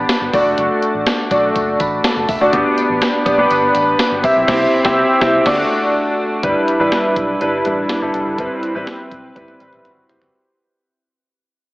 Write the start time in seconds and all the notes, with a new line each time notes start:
Already playing: B3 D4 G4 D5
0.09 snare, closed hi-hat, tambourine
0.21 G1
0.33 F#1 A3 D4 F#4 D5, kick, open hi-hat, tambourine
0.46 F1
0.58 F#1, closed hi-hat
0.82 closed hi-hat
0.94 A1
1.06 snare, closed hi-hat, tambourine
1.31 B1 A3 D4 F#4 D5, kick, closed hi-hat, tambourine
1.55 F#1, kick, closed hi-hat, tambourine
1.80 A1 B5, kick, closed hi-hat, tambourine
2.04 A5, snare, closed hi-hat, tambourine
2.16 F#1
2.29 F1 E5, kick, open hi-hat, tambourine
2.40 F#1 A3 D4 F#4 D5
2.53 G1 B3 D4 G4 D5, kick, closed hi-hat
2.78 closed hi-hat, tambourine
2.90 A1
3.01 snare, closed hi-hat, tambourine
3.26 B1 B3 D4 G4 D5, kick, closed hi-hat, tambourine
3.38 B3 D4 G4 B4
3.51 G1, closed hi-hat, tambourine
3.75 A1, closed hi-hat, tambourine
3.99 snare, closed hi-hat, tambourine
4.12 G1
4.23 C2 C4 E4 G4 E5, kick, open hi-hat, tambourine
4.36 B1
4.48 C2 C4 E4 G4 E5, kick, snare, crash
4.84 C2 C4 E4 G4 E5, kick, snare
5.21 C2 C4 E4 G4 E5, kick, snare
5.45 D2 A3 D4 F#4 D5, kick, snare, crash
6.43 G1 G3 D4 E4 B4, kick, closed hi-hat
6.68 closed hi-hat
6.79 A1 G3 D4 E4 B4
6.92 snare, closed hi-hat
7.16 B1, kick, closed hi-hat
7.40 G1 G3 D4 E4 B4, closed hi-hat
7.65 A1 G3 D4 E4 B4, closed hi-hat
7.89 snare, closed hi-hat
8.02 G1 G3 D4 E4 A4
8.14 F1, closed hi-hat
8.26 F#1
8.38 G1 G3 C4 E4 B4, kick, closed hi-hat
8.63 closed hi-hat
8.75 A1 G3 C4 E4 B4
8.87 snare, closed hi-hat
9.12 B1, kick, closed hi-hat
9.36 G1 G3 C4 E4 B4, kick, closed hi-hat, high tom
9.48 high tom
9.60 A1 G3 C4 E4 B4, closed hi-hat
9.73 mid tom
9.85 F#4 B4, closed hi-hat, mid tom
9.97 G1
10.09 F1 G4 C5, closed hi-hat, floor tom
10.21 F#1, floor tom